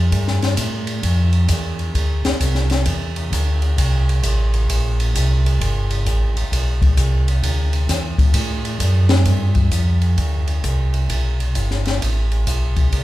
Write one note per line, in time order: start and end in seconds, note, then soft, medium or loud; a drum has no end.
0.00 0.11 F2 medium
0.12 0.56 G2 medium
0.12 kick soft
0.12 ride medium
0.28 snare soft
0.42 snare soft
0.42 ride soft
0.57 1.02 A2 medium
0.57 kick soft
0.57 hi-hat pedal medium
0.57 ride medium
0.87 ride soft
1.03 1.48 F2 medium
1.03 kick soft
1.03 ride medium
1.33 ride soft
1.48 1.94 E2 medium
1.48 kick soft
1.48 hi-hat pedal medium
1.48 ride medium
1.79 ride soft
1.95 2.23 D2 medium
1.95 kick soft
1.95 ride medium
2.25 2.33 D2 soft
2.25 snare medium
2.25 ride soft
2.40 2.85 C2 medium
2.40 kick soft
2.40 hi-hat pedal soft
2.40 ride medium
2.55 snare soft
2.70 snare soft
2.70 ride soft
2.86 3.31 E2 medium
2.86 kick soft
2.86 ride medium
3.16 ride soft
3.32 3.77 D2 loud
3.32 kick soft
3.32 hi-hat pedal medium
3.32 ride medium
3.62 ride soft
3.78 4.22 C2 medium
3.78 kick soft
3.78 ride medium
4.09 ride soft
4.23 4.68 A1 medium
4.23 kick soft
4.23 hi-hat pedal soft
4.23 ride medium
4.54 ride soft
4.69 5.14 A#1 medium
4.69 kick soft
4.69 ride medium
5.00 ride soft
5.15 5.60 C2 loud
5.15 kick soft
5.15 hi-hat pedal medium
5.15 ride medium
5.46 ride soft
5.61 6.06 G1 medium
5.61 kick soft
5.61 ride medium
5.91 ride soft
6.06 6.34 A1 medium
6.06 kick soft
6.06 hi-hat pedal medium
6.06 ride medium
6.36 6.44 A1 soft
6.36 ride soft
6.52 6.97 B1 medium
6.52 kick soft
6.52 ride medium
6.82 kick medium
6.82 ride soft
6.97 7.42 C2 medium
6.97 kick soft
6.97 hi-hat pedal medium
6.97 ride medium
7.28 ride soft
7.43 7.88 D2 medium
7.43 kick soft
7.43 ride medium
7.73 ride soft
7.89 8.34 E2 medium
7.89 kick soft
7.89 snare soft
7.89 hi-hat pedal medium
7.89 ride medium
8.18 kick medium
8.18 ride soft
8.34 8.79 A2 medium
8.34 kick soft
8.34 ride medium
8.65 ride soft
8.80 9.25 F#2 medium
8.80 kick soft
8.80 hi-hat pedal medium
8.80 ride medium
9.09 snare medium
9.09 ride soft
9.25 9.70 G2 medium
9.25 kick soft
9.25 ride medium
9.55 kick soft
9.55 ride soft
9.71 10.17 F2 medium
9.71 kick soft
9.71 hi-hat pedal soft
9.71 ride medium
10.02 ride soft
10.18 10.62 D2 medium
10.18 kick soft
10.18 ride medium
10.47 ride soft
10.64 11.08 C2 medium
10.64 kick soft
10.64 hi-hat pedal medium
10.64 ride medium
10.94 ride soft
11.10 11.54 B1 medium
11.10 kick soft
11.10 ride medium
11.40 ride soft
11.55 12.00 G1 medium
11.55 kick soft
11.55 hi-hat pedal soft
11.55 ride medium
11.71 snare soft
11.85 snare soft
11.85 ride soft
12.01 12.46 A1 medium
12.01 kick soft
12.01 ride medium
12.32 ride soft
12.47 12.91 B1 medium
12.47 kick soft
12.47 hi-hat pedal medium
12.47 ride medium
12.76 kick soft
12.76 ride soft
12.92 13.04 C2 medium
12.92 kick soft
12.92 ride medium